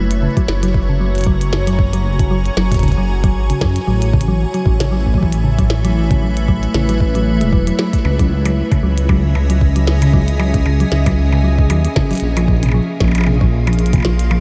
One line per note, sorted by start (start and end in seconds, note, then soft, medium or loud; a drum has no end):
0.00 0.28 F#1 loud
0.00 4.90 F#4 medium
0.00 9.32 C#5 medium
0.11 closed hi-hat medium
0.22 0.28 C#3 medium
0.32 3.87 A#5 medium
0.37 0.42 F#3 medium
0.37 kick loud
0.37 closed hi-hat soft
0.48 2.50 F#1 medium
0.48 snare loud
0.63 0.68 F#3 medium
0.63 closed hi-hat medium
0.67 5.36 G#5 medium
0.74 kick loud
0.89 0.94 C#3 medium
1.00 1.07 F#3 medium
1.15 closed hi-hat soft
1.18 closed hi-hat soft
1.21 closed hi-hat soft
1.24 1.33 F#3 medium
1.24 kick loud
1.24 closed hi-hat medium
1.41 closed hi-hat medium
1.53 1.59 C#3 medium
1.53 snare loud
1.67 1.72 F#3 medium
1.67 closed hi-hat medium
1.79 kick loud
1.93 1.98 F#3 medium
1.93 closed hi-hat medium
2.19 2.24 C#3 medium
2.19 kick loud
2.19 closed hi-hat medium
2.31 2.37 F#3 medium
2.46 closed hi-hat soft
2.57 3.37 F#1 loud
2.57 2.63 F#3 medium
2.57 snare loud
2.71 kick loud
2.71 closed hi-hat medium
2.74 kick medium
2.74 closed hi-hat medium
2.79 kick medium
2.79 closed hi-hat soft
2.83 2.89 C#3 medium
2.83 kick medium
2.83 closed hi-hat soft
2.88 kick soft
2.88 closed hi-hat soft
2.92 kick soft
2.92 closed hi-hat soft
2.98 3.02 F#3 medium
3.24 3.28 F#3 medium
3.24 kick loud
3.24 closed hi-hat medium
3.35 3.53 G#1 loud
3.50 3.55 C#3 medium
3.50 closed hi-hat medium
3.61 3.79 F#2 medium
3.61 3.67 F#3 medium
3.61 kick loud
3.61 snare loud
3.76 closed hi-hat medium
3.87 4.45 A1 loud
3.87 3.93 F#3 medium
3.87 8.05 A3 medium
4.02 closed hi-hat medium
4.13 4.20 C#3 medium
4.13 9.59 E4 medium
4.13 kick loud
4.21 closed hi-hat medium
4.28 4.33 F#3 medium
4.54 4.59 F#3 medium
4.54 closed hi-hat soft
4.66 6.67 A1 loud
4.66 kick loud
4.80 4.85 C#3 medium
4.80 snare loud
4.80 closed hi-hat medium
4.92 4.98 F#3 medium
5.06 kick soft
5.14 5.24 F#3 medium
5.14 kick medium
5.23 kick medium
5.32 closed hi-hat medium
5.42 5.50 C#3 medium
5.42 8.05 B4 medium
5.58 5.63 F#3 medium
5.58 kick loud
5.58 closed hi-hat medium
5.70 snare loud
5.85 5.89 F#3 medium
5.85 closed hi-hat medium
6.11 6.15 C#3 medium
6.11 kick loud
6.11 closed hi-hat medium
6.22 6.28 F#3 medium
6.37 closed hi-hat medium
6.48 6.54 F#3 medium
6.48 kick loud
6.63 closed hi-hat soft
6.74 7.43 A1 loud
6.74 6.80 C#3 medium
6.74 snare loud
6.89 6.94 F#3 medium
6.89 closed hi-hat medium
7.00 kick loud
7.15 7.20 F#3 medium
7.15 closed hi-hat soft
7.41 7.72 E1 medium
7.41 7.49 G#3 loud
7.41 closed hi-hat medium
7.53 7.63 F#3 medium
7.53 kick loud
7.67 7.72 F#3 medium
7.67 closed hi-hat medium
7.79 7.89 F#3 medium
7.79 snare loud
7.93 kick loud
7.93 closed hi-hat medium
8.05 8.63 C#2 loud
8.05 8.11 C#3 medium
8.05 12.22 C#4 medium
8.05 percussion blips soft
8.19 8.24 F#3 medium
8.19 kick loud
8.19 closed hi-hat medium
8.39 12.22 E5 medium
8.45 8.53 F#3 medium
8.45 closed hi-hat medium
8.45 percussion blips medium
8.52 12.22 D#5 medium
8.69 8.76 C#3 medium
8.69 13.90 G#4 medium
8.69 kick loud
8.69 closed hi-hat soft
8.69 percussion blips soft
8.83 10.85 C#2 loud
8.83 8.89 F#3 medium
8.98 closed hi-hat medium
9.09 9.19 F#3 medium
9.09 kick loud
9.09 percussion blips medium
9.35 9.41 C#3 medium
9.35 percussion blips soft
9.50 9.55 F#3 medium
9.50 closed hi-hat medium
9.61 kick loud
9.76 9.84 F#3 medium
9.76 closed hi-hat medium
9.87 snare loud
10.02 10.07 C#3 medium
10.02 closed hi-hat medium
10.02 percussion blips soft
10.13 10.20 F#3 medium
10.13 kick loud
10.28 closed hi-hat medium
10.39 10.50 F#3 medium
10.39 percussion blips medium
10.54 kick loud
10.54 closed hi-hat medium
10.66 10.72 C#3 medium
10.66 percussion blips medium
10.80 10.85 F#3 medium
10.80 closed hi-hat soft
10.92 11.71 C#2 loud
10.92 snare loud
11.06 11.14 F#3 medium
11.06 kick loud
11.06 closed hi-hat medium
11.06 percussion blips medium
11.32 11.37 C#3 medium
11.32 percussion blips medium
11.44 11.50 F#3 medium
11.58 kick loud
11.70 11.87 D#2 loud
11.70 11.80 F#3 medium
11.70 closed hi-hat medium
11.70 percussion blips medium
11.85 closed hi-hat medium
11.96 12.14 G#1 medium
11.96 12.02 C#3 medium
11.96 kick loud
11.96 snare loud
11.96 percussion blips medium
12.11 12.15 F#3 medium
12.11 closed hi-hat soft
12.13 closed hi-hat soft
12.15 closed hi-hat soft
12.18 closed hi-hat soft
12.20 12.80 A#1 loud
12.20 14.40 A#3 medium
12.20 closed hi-hat medium
12.37 12.45 F3 medium
12.37 closed hi-hat medium
12.37 percussion blips medium
12.48 kick loud
12.63 12.68 C3 medium
12.63 closed hi-hat medium
12.63 percussion blips soft
12.66 14.40 F4 medium
12.66 percussion blips soft
12.69 percussion blips soft
12.71 12.80 F3 medium
12.71 percussion blips soft
13.00 14.40 A#1 loud
13.00 13.11 F3 medium
13.00 kick loud
13.00 snare loud
13.00 percussion blips soft
13.04 percussion blips soft
13.08 percussion blips soft
13.11 closed hi-hat medium
13.11 percussion blips soft
13.15 percussion blips medium
13.18 percussion blips medium
13.21 percussion blips medium
13.24 13.33 C3 medium
13.24 percussion blips medium
13.26 percussion blips medium
13.41 13.46 F3 medium
13.41 kick loud
13.67 13.75 F3 medium
13.67 closed hi-hat soft
13.67 percussion blips medium
13.72 14.40 C5 medium
13.72 closed hi-hat soft
13.79 closed hi-hat soft
13.86 closed hi-hat medium
13.93 13.98 C3 medium
13.93 kick loud
13.93 closed hi-hat medium
13.93 percussion blips soft
13.96 percussion blips soft
13.98 percussion blips soft
14.00 percussion blips soft
14.02 14.11 F3 medium
14.02 snare loud
14.02 percussion blips soft
14.19 closed hi-hat medium
14.31 14.40 F3 medium
14.31 percussion blips medium